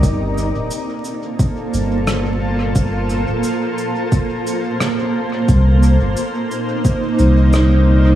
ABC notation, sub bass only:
X:1
M:4/4
L:1/16
Q:"Swing 16ths" 1/4=88
K:Gm
V:1 name="Sub bass" clef=bass
G,,,3 D,,, z6 G,,,6 | G,,,3 D,,, z12 | C,,3 G,,, z6 C,,6 |]